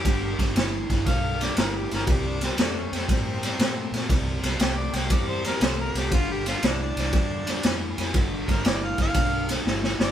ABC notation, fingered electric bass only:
X:1
M:4/4
L:1/8
Q:"Swing" 1/4=119
K:C
V:1 name="Fingered electric bass" clef=bass
G,,, G,,, G,,, G,,, B,,,2 G,,, G,,, | C,,2 F,, F,, A,,2 _B,, B,, | C,, C,, C,, C,, E,,2 C,, C,, | G,,,2 C,, C,, E,,2 F,, F,, |
G,,, G,,, G,,, G,,, B,,,2 G,,, G,,, |]